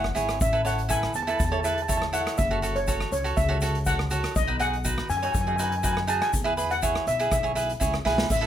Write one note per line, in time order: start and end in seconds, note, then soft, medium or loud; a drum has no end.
0.00 0.14 F#1 medium
0.00 0.27 F#5 loud
0.04 cross-stick medium
0.04 shaker soft
0.15 0.39 G#1 medium
0.15 0.38 E4 medium
0.15 0.38 G#4 medium
0.15 0.38 C#5 medium
0.15 closed hi-hat medium
0.15 shaker medium
0.28 cross-stick medium
0.28 closed hi-hat medium
0.28 shaker soft
0.41 1.05 A1 loud
0.41 0.53 E5 loud
0.41 kick loud
0.41 closed hi-hat medium
0.41 shaker loud
0.53 0.60 E4 medium
0.53 0.60 A4 medium
0.53 0.61 B4 medium
0.65 0.80 E4 medium
0.65 0.80 A4 medium
0.65 0.80 C#5 medium
0.65 0.91 F#5 medium
0.65 closed hi-hat medium
0.65 shaker medium
0.78 closed hi-hat medium
0.89 1.12 E4 medium
0.89 1.12 A4 medium
0.89 1.12 B4 medium
0.89 1.16 G#5 loud
0.89 kick medium
0.89 closed hi-hat medium
0.89 shaker loud
1.03 cross-stick medium
1.14 1.36 E2 medium
1.14 1.21 A5 loud
1.14 closed hi-hat medium
1.14 shaker medium
1.23 1.28 A5 medium
1.27 1.42 E4 medium
1.27 1.42 A4 medium
1.27 1.43 B4 medium
1.27 1.36 A5 medium
1.27 closed hi-hat medium
1.27 shaker soft
1.37 2.25 E2 medium
1.37 1.43 A5 medium
1.37 kick loud
1.37 closed hi-hat medium
1.37 shaker loud
1.45 1.51 A5 medium
1.52 1.59 E4 medium
1.52 1.59 A4 medium
1.52 1.59 C#5 medium
1.52 1.59 A5 medium
1.52 shaker soft
1.60 1.79 E4 medium
1.60 1.66 A5 medium
1.64 1.79 A4 medium
1.64 1.80 B4 medium
1.64 1.73 A5 medium
1.64 closed hi-hat medium
1.64 shaker medium
1.74 1.81 A5 medium
1.74 closed hi-hat medium
1.82 1.88 A5 medium
1.88 2.04 E4 medium
1.88 2.04 A4 medium
1.88 2.04 C#5 medium
1.88 1.96 A5 medium
1.88 kick loud
1.88 closed hi-hat medium
1.88 shaker loud
1.97 2.05 A5 medium
2.02 cross-stick medium
2.13 2.36 E4 medium
2.13 2.36 A4 medium
2.13 2.36 C#5 medium
2.13 2.37 F#5 medium
2.13 closed hi-hat medium
2.13 shaker medium
2.26 cross-stick medium
2.26 closed hi-hat medium
2.26 shaker soft
2.38 3.03 F#1 loud
2.38 2.77 E5 medium
2.38 kick loud
2.38 closed hi-hat medium
2.38 shaker loud
2.51 2.58 F#4 medium
2.51 2.58 A4 medium
2.51 2.59 C#5 medium
2.51 shaker soft
2.62 2.78 F#4 medium
2.62 2.78 A4 medium
2.62 2.78 C#5 medium
2.62 closed hi-hat medium
2.62 shaker medium
2.76 3.11 C#5 medium
2.76 closed hi-hat medium
2.87 3.10 F#4 medium
2.87 3.10 A4 medium
2.87 3.10 C#5 medium
2.87 kick medium
2.87 closed hi-hat medium
2.87 shaker loud
3.00 cross-stick medium
3.00 shaker soft
3.12 3.34 C#2 medium
3.12 3.24 C#5 medium
3.12 closed hi-hat medium
3.12 shaker medium
3.24 3.39 F#4 medium
3.24 3.40 A4 medium
3.24 3.40 C#5 medium
3.24 closed hi-hat medium
3.24 shaker soft
3.37 4.23 C#2 medium
3.37 3.83 E5 loud
3.37 kick loud
3.37 closed hi-hat medium
3.37 shaker medium
3.48 3.57 F#4 medium
3.48 3.57 A4 medium
3.48 3.57 C#5 medium
3.48 shaker soft
3.61 3.77 F#4 medium
3.61 3.77 A4 medium
3.61 3.77 C#5 medium
3.61 closed hi-hat medium
3.61 shaker medium
3.75 closed hi-hat medium
3.85 4.02 F#4 medium
3.85 4.02 A4 medium
3.85 4.02 C#5 medium
3.85 4.21 F#5 loud
3.85 kick loud
3.85 closed hi-hat medium
3.85 shaker loud
3.99 cross-stick medium
4.10 4.33 F#4 medium
4.10 4.33 A4 medium
4.10 4.34 C#5 medium
4.10 closed hi-hat medium
4.10 shaker medium
4.23 cross-stick medium
4.23 closed hi-hat medium
4.23 shaker soft
4.36 5.00 B1 loud
4.36 4.61 D#5 loud
4.36 kick loud
4.36 closed hi-hat medium
4.36 shaker medium
4.47 4.55 D#4 medium
4.47 4.56 F#4 medium
4.47 4.56 B4 medium
4.47 shaker soft
4.59 4.75 D#4 medium
4.59 4.75 F#4 medium
4.59 4.76 G#4 medium
4.59 5.06 F#5 loud
4.59 closed hi-hat medium
4.59 shaker medium
4.73 closed hi-hat medium
4.85 5.07 D#4 medium
4.85 5.07 F#4 medium
4.85 5.08 B4 medium
4.85 kick medium
4.85 closed hi-hat medium
4.85 shaker loud
4.97 cross-stick medium
4.97 shaker soft
5.09 5.31 F#2 medium
5.09 5.16 G#5 medium
5.09 closed hi-hat medium
5.09 shaker medium
5.17 5.24 G#5 medium
5.22 5.37 D#4 medium
5.22 5.37 F#4 medium
5.22 5.37 C#5 medium
5.22 5.31 G#5 medium
5.22 closed hi-hat medium
5.22 shaker soft
5.32 6.20 F#2 loud
5.32 5.39 G#5 medium
5.32 kick loud
5.32 closed hi-hat medium
5.32 shaker loud
5.41 5.47 G#5 medium
5.47 5.54 D#4 medium
5.47 5.54 F#4 medium
5.47 5.55 G#4 medium
5.47 5.55 G#5 medium
5.47 shaker soft
5.56 5.74 D#4 medium
5.56 5.74 F#4 medium
5.56 5.74 B4 medium
5.56 5.62 G#5 medium
5.56 closed hi-hat medium
5.56 shaker medium
5.63 5.69 G#5 medium
5.70 5.77 G#5 medium
5.70 closed hi-hat medium
5.78 5.84 G#5 medium
5.83 5.99 D#4 medium
5.83 5.99 F#4 medium
5.83 5.99 B4 medium
5.83 5.92 G#5 medium
5.83 kick loud
5.83 closed hi-hat medium
5.83 shaker loud
5.93 6.00 G#5 medium
5.97 cross-stick medium
6.07 6.30 D#4 medium
6.07 6.31 F#4 medium
6.07 6.31 G#4 medium
6.07 6.15 A5 medium
6.07 closed hi-hat medium
6.07 shaker medium
6.21 6.67 G#5 medium
6.21 cross-stick medium
6.21 closed hi-hat medium
6.21 shaker soft
6.33 6.97 E2 loud
6.33 kick loud
6.33 closed hi-hat medium
6.33 shaker loud
6.44 6.52 E4 medium
6.44 6.53 G#4 medium
6.44 6.53 B4 medium
6.57 6.73 E4 medium
6.57 6.73 G#4 medium
6.57 6.73 B4 medium
6.57 closed hi-hat medium
6.57 shaker medium
6.70 7.09 F#5 medium
6.70 closed hi-hat medium
6.70 shaker soft
6.82 7.05 E4 medium
6.82 7.05 G#4 medium
6.82 7.05 C#5 medium
6.82 kick medium
6.82 closed hi-hat medium
6.82 shaker loud
6.95 cross-stick medium
6.95 shaker soft
7.07 7.28 B1 medium
7.07 7.30 E5 medium
7.07 closed hi-hat medium
7.07 shaker medium
7.19 7.34 E4 medium
7.19 7.35 G#4 medium
7.19 7.35 B4 medium
7.19 closed hi-hat medium
7.19 shaker soft
7.32 7.74 B1 medium
7.32 8.02 E5 medium
7.32 kick loud
7.32 cross-stick medium
7.32 closed hi-hat medium
7.32 shaker loud
7.43 7.51 E4 medium
7.43 7.51 G#4 medium
7.43 7.52 C#5 medium
7.43 shaker soft
7.55 7.71 E4 medium
7.55 7.71 G#4 medium
7.55 7.71 B4 medium
7.55 closed hi-hat medium
7.55 shaker medium
7.69 closed hi-hat medium
7.69 shaker soft
7.80 8.03 C#2 medium
7.80 7.96 E4 medium
7.80 7.96 G#4 medium
7.80 7.96 C#5 medium
7.80 kick medium
7.80 closed hi-hat medium
7.80 shaker medium
7.93 cross-stick medium
7.93 shaker soft
8.05 8.28 B1 medium
8.05 8.28 E4 medium
8.05 8.28 G#4 medium
8.05 8.28 B4 medium
8.05 snare medium
8.18 snare loud
8.18 shaker soft
8.30 8.47 A1 medium
8.30 8.47 E5 medium
8.30 kick loud
8.30 crash loud
8.30 shaker loud
8.41 8.47 E4 medium
8.41 8.47 A4 medium
8.41 8.47 B4 medium
8.41 shaker soft